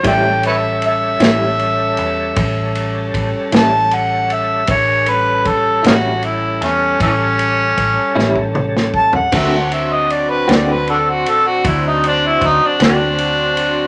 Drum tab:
CC |------------------------|------------------------|x-----------------------|
RD |x-x-x-x-x-x-x-x-x-x-x-x-|x-x-x-x-x-x-x-x-x-------|x-x-x-x-x-x-x-x-x-x-x-x-|
SD |------o-----------o-----|------o---o-------o--o--|------o-----------o-----|
T2 |------------------------|--------------------o---|------------------------|
FT |------------------------|-----------------------o|------------------------|
BD |o-----------o---o-------|o---o-------o---o--o--o-|o-----------o---o-------|